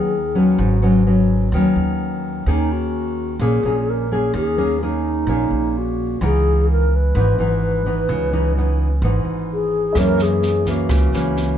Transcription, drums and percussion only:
9.95 kick soft
9.95 cross-stick medium
9.95 snare soft
9.95 shaker medium
10.19 snare soft
10.19 shaker soft
10.42 snare soft
10.42 shaker medium
10.66 kick soft
10.66 snare soft
10.66 shaker soft
10.89 kick soft
10.89 cross-stick soft
10.89 snare soft
10.89 shaker medium
11.13 snare soft
11.13 shaker soft
11.36 snare soft
11.36 shaker medium

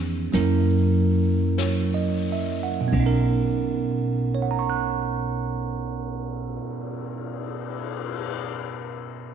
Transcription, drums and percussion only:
0.33 brush sweep soft
0.33 snare soft
1.58 brush sweep soft
1.58 snare soft
1.58 hi-hat pedal medium
2.92 kick soft
2.92 ride soft
3.89 cymbal swell soft

